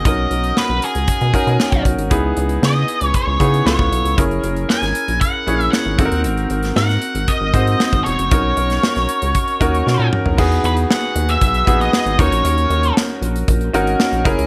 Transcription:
<<
  \new Staff \with { instrumentName = "Lead electric guitar" } { \time 4/4 \key b \major \tempo 4 = 116 dis''4 b'8 gis'2 r8 | r4 dis''4 cis''4 cis''4 | r4 gis''4 fis''4 fis''4 | r4 fis''4 dis''4. cis''8~ |
cis''2.~ cis''8 r8 | r8 b'8 fis''8. e''4 dis''8. cis''8~ | cis''4 r2. | }
  \new Staff \with { instrumentName = "Grand piano" } { \time 4/4 \key b \major <cis' dis' fis' ais'>2 r8 <cis' dis' fis' ais'>4. | <b dis' e' gis'>2 r8 <b dis' e' gis'>8 <b e' eis' a'>4 | <cis' e' gis' ais'>2 r8 <cis' e' gis' cis''>4 <bis dis' fis' a' ais'>8~ | <bis dis' fis' a' ais'>4. r4 <bis dis' fis' bis'>4. |
<cis' dis' fis' ais'>2 r8 <cis' dis' fis' ais'>4. | <b dis' fis' gis'>2 r8 <b dis' fis' gis'>4 <cis' dis' fis' ais'>8~ | <cis' dis' fis' ais'>4. r4 <cis' dis' fis' ais'>4 <cis' e' gis' ais'>8 | }
  \new Staff \with { instrumentName = "Analog synth bass" } { \clef bass \time 4/4 \key b \major b,,8 b,,8 r16 b,,16 r16 cis,16 r16 b,16 r16 b,16 r16 b,,16 b,,16 gis,,16 | cis,8 cis,8 cis8 r16 cis,16 r16 cis,16 cis8 cis,16 cis,16 b,,16 cis,16 | fis,,8 fis,,8 r16 gis,,16 r16 ais,,16 r8 ais,,8 r16 gis,,16 gis,,16 dis,16 | gis,,8 gis,,8 gis,8 r16 gis,,16 r16 gis,,16 gis,8 r16 gis,,16 e,,16 fis,,16 |
b,,8 b,,8 r16 b,,16 r16 cis,16 r8 dis,8 b,16 ais,16 r16 b,,16 | e,8 e,8 r8 dis,8 b,,8 ais,,8 r16 gis,,16 dis,16 ais,,16 | dis,8 dis,8 r8 ais,,8 ais,,8 gis,,8 r16 ais,,16 fis,,16 cis,16 | }
  \new DrumStaff \with { instrumentName = "Drums" } \drummode { \time 4/4 <hh bd>8 hh16 hh16 sn8 hh16 hh16 <hh bd>16 hh16 <hh bd>16 hh16 sn16 <hh bd>16 <hh bd>16 hh16 | <hh bd>8 hh16 hh16 sn8 hh16 hh16 <hh bd>8 <hh bd>16 hh16 sn16 bd16 hh16 hh16 | <hh bd>16 hh16 hh16 hh16 sn16 <hh sn>16 hh16 hh16 <hh bd>8 hh16 hh16 sn8 <hh bd>16 hh16 | hh16 hh16 hh16 <hh sn>16 sn16 <hh sn>16 hh16 hh16 <hh bd>8 <hh bd>16 hh16 sn16 <hh bd>16 hh16 hh16 |
<hh bd>8 hh16 <hh sn>16 sn16 <hh sn>16 hh16 hh16 <hh bd>16 hh16 <hh bd>16 hh16 sn8 toml16 tomfh16 | <cymc bd>16 hh16 hh16 hh16 sn8 hh16 hh16 <hh bd>16 hh16 <hh bd>16 hh16 sn16 hh16 <hh bd>16 hh16 | hh16 hh16 hh16 hh16 sn8 hh16 hh16 <hh bd>16 hh16 hh16 hh16 sn16 hh16 <hh bd>16 hh16 | }
>>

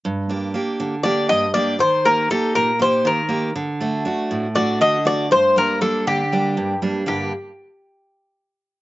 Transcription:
<<
  \new Staff \with { instrumentName = "Bouzouki" } { \time 7/8 \key g \minor \tempo 4 = 119 r2 d''8 ees''8 d''8 | c''8 bes'8 a'8 bes'8 c''8 bes'4 | r2 d''8 ees''8 d''8 | c''8 bes'8 a'8 g'4. r8 |
g'8 r2. | }
  \new Staff \with { instrumentName = "Steel-string acoustic guitar" } { \time 7/8 \key g \minor g,8 <bes d' g'>8 <bes d' g'>8 d8 <bes d' g'>8 g,8 <bes d' g'>8 | ees8 <bes ees' g'>8 <bes ees' g'>8 bes,8 <bes ees' g'>8 ees8 <bes ees' g'>8 | d8 <a d' fis'>8 <a d' fis'>8 a,8 <a d' fis'>8 d8 <a d' fis'>8 | g,8 <g bes d'>8 <g bes d'>8 d8 <g bes d'>8 g,8 <g bes d'>8 |
<g, d g bes d'>8 r2. | }
>>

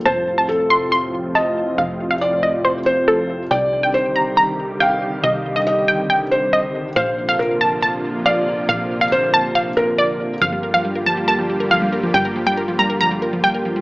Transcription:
<<
  \new Staff \with { instrumentName = "Synth pluck" } { \time 4/4 \key g \minor \tempo 4 = 139 a''8 r16 a''8 r16 c'''8 c'''8. r16 a''8. r16 | f''8 r16 f''8 r16 ees''8 c''8. r16 a'8. r16 | g''8 r16 g''8 r16 bes''8 bes''8. r16 g''8. r16 | ees''8 r16 ees''8 r16 g''8 g''8. r16 ees''8. r16 |
f''8 r16 f''8 r16 a''8 a''8. r16 f''8. r16 | f''8 r16 f''8 r16 a''8 f''8. r16 d''8. r16 | f''8 r16 f''8 r16 a''8 a''8. r16 f''8. r16 | g''8 r16 g''8 r16 bes''8 bes''8. r16 g''8. r16 | }
  \new Staff \with { instrumentName = "Felt piano" } { \time 4/4 \key g \minor c''4 a'4 r4 ees''4~ | ees''4 d''4. c''4. | d''4 c''4 r4 f''4~ | f''4 ees''4. c''4. |
c''4 bes'4 r4 d''4~ | d''4 c''4. bes'4. | r1 | r1 | }
  \new Staff \with { instrumentName = "Supersaw synth" } { \clef bass \time 4/4 \key g \minor << { <a, c f f'>1~ | <a, c f f'>1 | <ees g g'>1~ | <ees g g'>1 |
<c f bes f'>1~ | <c f bes f'>1 | <d g bes g'>1~ | <d g bes g'>1 | } \\ { c'1~ | c'1 | d1~ | d1~ |
d1~ | d1 | f'1~ | f'1 | } >> }
  \new Staff \with { instrumentName = "Synth arpeggio sound" } { \clef bass \time 4/4 \key g \minor r1 | r1 | r1 | r1 |
r1 | r1 | f16 g16 bes'16 f16 g16 bes'16 f16 g16 bes'16 f16 g16 bes'16 f16 g16 bes'16 f16 | g16 bes'16 f16 g16 bes'16 f16 g16 bes'16 f16 g16 bes'16 f16 g16 bes'16 f16 g16 | }
  \new Staff \with { instrumentName = "Analog synth bass" } { \clef bass \time 4/4 \key g \minor f,,1 | f,,1 | c,1 | c,1 |
bes,,1 | bes,,1 | g,,1 | g,,1 | }
>>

